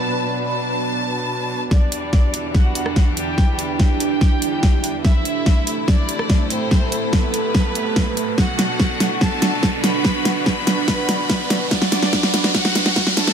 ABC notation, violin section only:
X:1
M:4/4
L:1/8
Q:1/4=144
K:Em
V:1 name="Violin section"
a2 a6 | [Dd]4 [Ff]3 [Gg]- | [Gg]2 [Gg]6 | [Ee]4 [Dd]3 [Cc]- |
[Cc]2 [B,B]6 | [Ff]4 [Aa]3 [Bb]- | [Bb]2 [Bb]6 | [Dd]4 [Ff]3 [Aa] |]